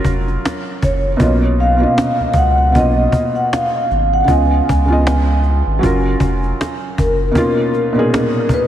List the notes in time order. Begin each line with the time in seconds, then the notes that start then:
Already playing: F#3 C#4 F4 A#4
0.05 F1, cajon bass
0.28 cajon slap
0.46 cajon slap
0.83 F#1 C#5, cajon bass
1.17 B1 B2 A#3 C#4, cajon bass
1.21 F4 D#5
1.59 F5, cajon slap
1.77 B2 A#3 C#4
1.82 F4 D#5
1.98 cajon slap
2.20 C#2
2.34 C#2, cajon bass
2.38 F#5
2.58 F#5
2.72 B1 B2 A#3 C#4 D#5, cajon bass
2.77 F4 D#5
3.12 cajon bass
3.35 F#5, cajon slap
3.53 F5, cajon slap
3.91 G#1, cajon slap
4.13 F#5
4.24 C#3 B3 F4, cajon bass
4.29 C#2 D#5 G#5
4.69 C#2, cajon bass
4.86 C#3 B3
4.90 F4 D#5
5.07 cajon slap
5.43 cajon slap
5.66 G#1
5.79 F#3 C#4
5.83 F#1 F4 A#4, cajon bass
6.20 F1, cajon bass
6.43 cajon slap
6.61 cajon slap
6.98 F#1 A#4, cajon bass
7.31 B2 A#3 C#4
7.35 D#4 F4, cajon bass
7.74 cajon slap
7.93 A#2 B2 C#4
7.97 D#4 G#4
8.14 cajon slap
8.49 cajon bass
8.54 B4